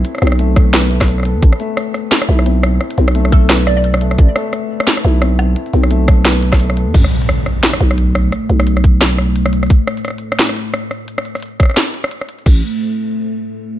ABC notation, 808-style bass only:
X:1
M:4/4
L:1/16
Q:"Swing 16ths" 1/4=174
K:Am
V:1 name="808-style bass" clef=bass
z2 B,,,12- B,,, E,, | A,,, z8 z B,,,6 | z2 B,,,12- B,,,2 | A,,, z8 z B,,,6 |
z2 B,,,12- B,,, E,, | A,,, z8 z B,,,6 | z2 B,,,12- B,,,2 | z16 |
z16 | A,,,2 z12 z2 |]